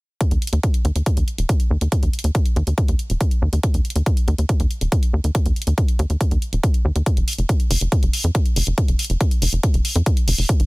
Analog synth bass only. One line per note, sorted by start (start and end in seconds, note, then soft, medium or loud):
0.31 0.38 D#2 medium
0.53 0.59 D#2 medium
0.85 0.91 D#2 medium
0.96 1.02 D#2 medium
1.17 1.24 D#2 medium
1.38 1.45 D#1 medium
1.71 1.77 D#2 medium
1.81 1.88 D#2 medium
2.03 2.09 D#2 medium
2.24 2.31 D#2 medium
2.56 2.63 D#2 medium
2.67 2.74 D#2 medium
2.88 2.95 D#2 medium
3.10 3.16 D#1 medium
3.42 3.49 D#2 medium
3.53 3.59 D#2 medium
3.74 3.81 D#2 medium
3.96 4.02 D#2 medium
4.28 4.34 D#2 medium
4.38 4.45 D#2 medium
4.60 4.66 D#2 medium
4.81 4.88 D#1 medium
5.13 5.20 D#2 medium
5.24 5.31 D#2 medium
5.46 5.52 D#2 medium
5.67 5.74 D#2 medium
5.99 6.06 D#2 medium
6.10 6.16 D#2 medium
6.31 6.38 D#2 medium
6.53 6.59 D#1 medium
6.85 6.91 D#2 medium
6.96 7.02 D#2 medium
7.17 7.24 F1 medium
7.38 7.45 F1 medium
7.71 7.77 F1 medium
7.81 7.88 F1 medium
8.03 8.09 F1 medium
8.24 8.31 F2 medium
8.56 8.63 F1 medium
8.67 8.74 F1 medium
8.88 8.95 F1 medium
9.10 9.16 F1 medium
9.42 9.49 F1 medium
9.53 9.59 F1 medium
9.74 9.81 F1 medium
9.96 10.02 F2 medium
10.28 10.34 F1 medium
10.38 10.45 F1 medium
10.60 10.66 G#1 medium